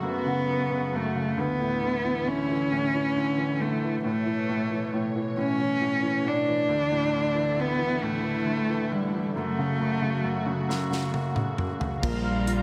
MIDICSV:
0, 0, Header, 1, 6, 480
1, 0, Start_track
1, 0, Key_signature, 2, "major"
1, 0, Tempo, 888889
1, 745, Time_signature, 6, 3, 24, 8
1, 6817, End_track
2, 0, Start_track
2, 0, Title_t, "Cello"
2, 0, Program_c, 0, 42
2, 31, Note_on_c, 0, 59, 66
2, 516, Note_on_c, 0, 57, 52
2, 524, Note_off_c, 0, 59, 0
2, 753, Note_on_c, 0, 59, 65
2, 761, Note_off_c, 0, 57, 0
2, 1229, Note_on_c, 0, 61, 77
2, 1237, Note_off_c, 0, 59, 0
2, 1950, Note_on_c, 0, 57, 66
2, 1958, Note_off_c, 0, 61, 0
2, 2184, Note_off_c, 0, 57, 0
2, 2187, Note_on_c, 0, 57, 71
2, 2702, Note_off_c, 0, 57, 0
2, 2911, Note_on_c, 0, 61, 83
2, 3392, Note_on_c, 0, 62, 82
2, 3400, Note_off_c, 0, 61, 0
2, 4103, Note_on_c, 0, 59, 83
2, 4111, Note_off_c, 0, 62, 0
2, 4341, Note_on_c, 0, 57, 75
2, 4349, Note_off_c, 0, 59, 0
2, 4822, Note_on_c, 0, 55, 60
2, 4830, Note_off_c, 0, 57, 0
2, 5065, Note_on_c, 0, 57, 66
2, 5073, Note_off_c, 0, 55, 0
2, 5781, Note_off_c, 0, 57, 0
2, 6518, Note_on_c, 0, 55, 68
2, 6817, Note_off_c, 0, 55, 0
2, 6817, End_track
3, 0, Start_track
3, 0, Title_t, "String section"
3, 0, Program_c, 1, 48
3, 0, Note_on_c, 1, 49, 55
3, 0, Note_on_c, 1, 54, 51
3, 0, Note_on_c, 1, 57, 48
3, 0, Note_on_c, 1, 66, 62
3, 727, Note_off_c, 1, 66, 0
3, 728, Note_off_c, 1, 49, 0
3, 729, Note_off_c, 1, 54, 0
3, 745, Note_on_c, 1, 64, 61
3, 747, Note_on_c, 1, 50, 48
3, 749, Note_on_c, 1, 52, 49
3, 2170, Note_off_c, 1, 64, 0
3, 2171, Note_off_c, 1, 50, 0
3, 2191, Note_on_c, 1, 73, 60
3, 2192, Note_on_c, 1, 47, 53
3, 3594, Note_off_c, 1, 57, 0
3, 3596, Note_off_c, 1, 52, 0
3, 3605, Note_off_c, 1, 47, 0
3, 3605, Note_off_c, 1, 73, 0
3, 3613, Note_on_c, 1, 57, 57
3, 3615, Note_on_c, 1, 52, 49
3, 3617, Note_on_c, 1, 64, 65
3, 3620, Note_on_c, 1, 50, 58
3, 5036, Note_off_c, 1, 52, 0
3, 5037, Note_off_c, 1, 64, 0
3, 5039, Note_off_c, 1, 50, 0
3, 5047, Note_on_c, 1, 66, 64
3, 5048, Note_on_c, 1, 49, 55
3, 5049, Note_on_c, 1, 54, 51
3, 6478, Note_off_c, 1, 57, 0
3, 6484, Note_off_c, 1, 66, 0
3, 6485, Note_off_c, 1, 49, 0
3, 6485, Note_off_c, 1, 54, 0
3, 6503, Note_on_c, 1, 77, 52
3, 6504, Note_on_c, 1, 65, 59
3, 6506, Note_on_c, 1, 82, 58
3, 6817, Note_off_c, 1, 65, 0
3, 6817, Note_off_c, 1, 77, 0
3, 6817, Note_off_c, 1, 82, 0
3, 6817, End_track
4, 0, Start_track
4, 0, Title_t, "Upright piano"
4, 0, Program_c, 2, 0
4, 0, Control_c, 2, 64, 127
4, 0, Note_on_c, 2, 42, 45
4, 0, Note_on_c, 2, 49, 40
4, 14, Note_off_c, 2, 42, 0
4, 14, Note_on_c, 2, 42, 47
4, 133, Note_off_c, 2, 49, 0
4, 141, Note_on_c, 2, 49, 37
4, 254, Note_off_c, 2, 42, 0
4, 262, Note_on_c, 2, 42, 39
4, 370, Note_off_c, 2, 49, 0
4, 378, Note_on_c, 2, 49, 38
4, 494, Note_off_c, 2, 42, 0
4, 502, Note_on_c, 2, 42, 41
4, 616, Note_off_c, 2, 49, 0
4, 624, Note_on_c, 2, 49, 37
4, 737, Note_off_c, 2, 42, 0
4, 741, Note_off_c, 2, 49, 0
4, 741, Note_on_c, 2, 38, 48
4, 751, Control_c, 2, 64, 0
4, 842, Control_c, 2, 64, 127
4, 863, Note_on_c, 2, 45, 34
4, 987, Note_on_c, 2, 50, 40
4, 1103, Note_on_c, 2, 52, 42
4, 1218, Note_off_c, 2, 50, 0
4, 1227, Note_on_c, 2, 50, 38
4, 1340, Note_off_c, 2, 52, 0
4, 1348, Note_on_c, 2, 52, 41
4, 1458, Note_off_c, 2, 45, 0
4, 1466, Note_on_c, 2, 45, 45
4, 1578, Note_off_c, 2, 52, 0
4, 1586, Note_on_c, 2, 52, 37
4, 1699, Note_off_c, 2, 50, 0
4, 1707, Note_on_c, 2, 50, 44
4, 1816, Note_off_c, 2, 52, 0
4, 1824, Note_on_c, 2, 52, 41
4, 1941, Note_off_c, 2, 50, 0
4, 1949, Note_on_c, 2, 50, 43
4, 2059, Note_off_c, 2, 52, 0
4, 2067, Note_on_c, 2, 52, 42
4, 2161, Note_off_c, 2, 38, 0
4, 2163, Note_off_c, 2, 45, 0
4, 2179, Note_off_c, 2, 50, 0
4, 2181, Note_on_c, 2, 45, 51
4, 2182, Note_off_c, 2, 52, 0
4, 2192, Control_c, 2, 64, 0
4, 2287, Control_c, 2, 64, 127
4, 2299, Note_on_c, 2, 52, 40
4, 2415, Note_off_c, 2, 45, 0
4, 2423, Note_on_c, 2, 45, 44
4, 2534, Note_off_c, 2, 52, 0
4, 2542, Note_on_c, 2, 52, 46
4, 2657, Note_off_c, 2, 45, 0
4, 2665, Note_on_c, 2, 45, 46
4, 2775, Note_off_c, 2, 52, 0
4, 2784, Note_on_c, 2, 52, 46
4, 2891, Note_off_c, 2, 45, 0
4, 2899, Note_on_c, 2, 45, 48
4, 3009, Note_off_c, 2, 52, 0
4, 3017, Note_on_c, 2, 52, 38
4, 3128, Note_off_c, 2, 45, 0
4, 3136, Note_on_c, 2, 45, 44
4, 3246, Note_off_c, 2, 52, 0
4, 3254, Note_on_c, 2, 52, 45
4, 3367, Note_off_c, 2, 45, 0
4, 3375, Note_on_c, 2, 45, 46
4, 3489, Note_off_c, 2, 52, 0
4, 3497, Note_on_c, 2, 52, 46
4, 3608, Note_off_c, 2, 45, 0
4, 3610, Note_on_c, 2, 38, 57
4, 3612, Note_off_c, 2, 52, 0
4, 3623, Control_c, 2, 64, 0
4, 3727, Control_c, 2, 64, 127
4, 3733, Note_on_c, 2, 45, 43
4, 3848, Note_on_c, 2, 50, 43
4, 3964, Note_on_c, 2, 52, 44
4, 4078, Note_off_c, 2, 50, 0
4, 4086, Note_on_c, 2, 50, 45
4, 4196, Note_off_c, 2, 52, 0
4, 4204, Note_on_c, 2, 52, 46
4, 4320, Note_off_c, 2, 45, 0
4, 4328, Note_on_c, 2, 45, 51
4, 4436, Note_off_c, 2, 52, 0
4, 4444, Note_on_c, 2, 52, 36
4, 4558, Note_off_c, 2, 50, 0
4, 4566, Note_on_c, 2, 50, 43
4, 4686, Note_off_c, 2, 52, 0
4, 4694, Note_on_c, 2, 52, 44
4, 4805, Note_off_c, 2, 50, 0
4, 4813, Note_on_c, 2, 50, 45
4, 4925, Note_off_c, 2, 52, 0
4, 4933, Note_on_c, 2, 52, 40
4, 5026, Note_off_c, 2, 38, 0
4, 5027, Note_off_c, 2, 45, 0
4, 5044, Note_off_c, 2, 50, 0
4, 5048, Note_off_c, 2, 52, 0
4, 5052, Note_on_c, 2, 42, 50
4, 5058, Control_c, 2, 64, 0
4, 5165, Control_c, 2, 64, 127
4, 5176, Note_on_c, 2, 49, 40
4, 5286, Note_off_c, 2, 42, 0
4, 5294, Note_on_c, 2, 42, 44
4, 5402, Note_off_c, 2, 49, 0
4, 5410, Note_on_c, 2, 49, 41
4, 5520, Note_off_c, 2, 42, 0
4, 5528, Note_on_c, 2, 42, 44
4, 5641, Note_off_c, 2, 49, 0
4, 5649, Note_on_c, 2, 49, 44
4, 5763, Note_off_c, 2, 42, 0
4, 5771, Note_on_c, 2, 42, 51
4, 5880, Note_off_c, 2, 49, 0
4, 5888, Note_on_c, 2, 49, 37
4, 5998, Note_off_c, 2, 42, 0
4, 6006, Note_on_c, 2, 42, 40
4, 6120, Note_off_c, 2, 49, 0
4, 6129, Note_on_c, 2, 49, 39
4, 6244, Note_off_c, 2, 42, 0
4, 6252, Note_on_c, 2, 42, 39
4, 6362, Note_off_c, 2, 49, 0
4, 6370, Note_on_c, 2, 49, 39
4, 6490, Note_off_c, 2, 42, 0
4, 6490, Note_on_c, 2, 46, 53
4, 6492, Note_off_c, 2, 49, 0
4, 6508, Control_c, 2, 64, 0
4, 6590, Control_c, 2, 64, 127
4, 6735, Note_on_c, 2, 65, 45
4, 6817, Note_off_c, 2, 46, 0
4, 6817, Note_off_c, 2, 65, 0
4, 6817, End_track
5, 0, Start_track
5, 0, Title_t, "Analog synth bass"
5, 0, Program_c, 3, 38
5, 6495, Note_on_c, 3, 34, 95
5, 6817, Note_off_c, 3, 34, 0
5, 6817, End_track
6, 0, Start_track
6, 0, Title_t, "Drums"
6, 5779, Note_on_c, 9, 38, 38
6, 5833, Note_off_c, 9, 38, 0
6, 5900, Note_on_c, 9, 38, 42
6, 5954, Note_off_c, 9, 38, 0
6, 6015, Note_on_c, 9, 48, 58
6, 6069, Note_off_c, 9, 48, 0
6, 6134, Note_on_c, 9, 47, 54
6, 6188, Note_off_c, 9, 47, 0
6, 6255, Note_on_c, 9, 45, 67
6, 6309, Note_off_c, 9, 45, 0
6, 6377, Note_on_c, 9, 43, 61
6, 6431, Note_off_c, 9, 43, 0
6, 6497, Note_on_c, 9, 49, 68
6, 6498, Note_on_c, 9, 36, 94
6, 6551, Note_off_c, 9, 49, 0
6, 6552, Note_off_c, 9, 36, 0
6, 6736, Note_on_c, 9, 42, 44
6, 6790, Note_off_c, 9, 42, 0
6, 6817, End_track
0, 0, End_of_file